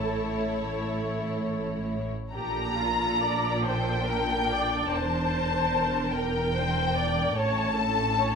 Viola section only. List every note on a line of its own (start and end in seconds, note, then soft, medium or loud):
0.00 1.62 A4 soft
2.34 2.74 G4 soft
2.77 3.21 F4 soft
3.21 3.64 D5 soft
3.65 4.07 C5 soft
4.07 4.50 A#4 soft
4.50 4.92 D5 soft
4.92 6.15 C5 soft
6.16 6.56 A#4 soft
6.56 6.97 C5 soft
6.97 7.37 D5 soft
7.38 7.78 C#5 soft
7.78 8.20 A4 soft
8.19 8.35 C#5 soft